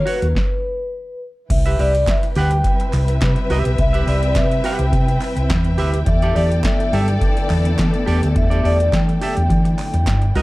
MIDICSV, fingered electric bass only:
0, 0, Header, 1, 2, 480
1, 0, Start_track
1, 0, Key_signature, 1, "minor"
1, 0, Tempo, 571429
1, 1259, Time_signature, 4, 2, 24, 8
1, 8754, End_track
2, 0, Start_track
2, 0, Title_t, "Fingered electric bass"
2, 0, Program_c, 0, 33
2, 187, Note_on_c, 0, 39, 99
2, 281, Note_off_c, 0, 39, 0
2, 1263, Note_on_c, 0, 36, 108
2, 1465, Note_off_c, 0, 36, 0
2, 1505, Note_on_c, 0, 36, 99
2, 1706, Note_off_c, 0, 36, 0
2, 1985, Note_on_c, 0, 38, 103
2, 2186, Note_off_c, 0, 38, 0
2, 2464, Note_on_c, 0, 36, 107
2, 2665, Note_off_c, 0, 36, 0
2, 2703, Note_on_c, 0, 48, 118
2, 2809, Note_off_c, 0, 48, 0
2, 2939, Note_on_c, 0, 36, 97
2, 3047, Note_off_c, 0, 36, 0
2, 3071, Note_on_c, 0, 35, 94
2, 3165, Note_off_c, 0, 35, 0
2, 3181, Note_on_c, 0, 36, 97
2, 3384, Note_off_c, 0, 36, 0
2, 3420, Note_on_c, 0, 36, 105
2, 3659, Note_on_c, 0, 48, 100
2, 3672, Note_off_c, 0, 36, 0
2, 3863, Note_off_c, 0, 48, 0
2, 4026, Note_on_c, 0, 36, 104
2, 4122, Note_off_c, 0, 36, 0
2, 4139, Note_on_c, 0, 48, 106
2, 4343, Note_off_c, 0, 48, 0
2, 4506, Note_on_c, 0, 36, 85
2, 4602, Note_off_c, 0, 36, 0
2, 4623, Note_on_c, 0, 40, 118
2, 4858, Note_off_c, 0, 40, 0
2, 4858, Note_on_c, 0, 38, 95
2, 5062, Note_off_c, 0, 38, 0
2, 5098, Note_on_c, 0, 40, 99
2, 5301, Note_off_c, 0, 40, 0
2, 5342, Note_on_c, 0, 40, 113
2, 5544, Note_off_c, 0, 40, 0
2, 5821, Note_on_c, 0, 43, 96
2, 6023, Note_off_c, 0, 43, 0
2, 6302, Note_on_c, 0, 40, 95
2, 6503, Note_off_c, 0, 40, 0
2, 6545, Note_on_c, 0, 52, 122
2, 6649, Note_off_c, 0, 52, 0
2, 6783, Note_on_c, 0, 40, 89
2, 6888, Note_off_c, 0, 40, 0
2, 6911, Note_on_c, 0, 38, 95
2, 7004, Note_off_c, 0, 38, 0
2, 7024, Note_on_c, 0, 40, 110
2, 7223, Note_off_c, 0, 40, 0
2, 7262, Note_on_c, 0, 40, 103
2, 7462, Note_off_c, 0, 40, 0
2, 7501, Note_on_c, 0, 52, 101
2, 7702, Note_off_c, 0, 52, 0
2, 7873, Note_on_c, 0, 40, 101
2, 7964, Note_off_c, 0, 40, 0
2, 7979, Note_on_c, 0, 52, 105
2, 8180, Note_off_c, 0, 52, 0
2, 8347, Note_on_c, 0, 40, 96
2, 8459, Note_off_c, 0, 40, 0
2, 8459, Note_on_c, 0, 43, 100
2, 8659, Note_off_c, 0, 43, 0
2, 8695, Note_on_c, 0, 36, 115
2, 8754, Note_off_c, 0, 36, 0
2, 8754, End_track
0, 0, End_of_file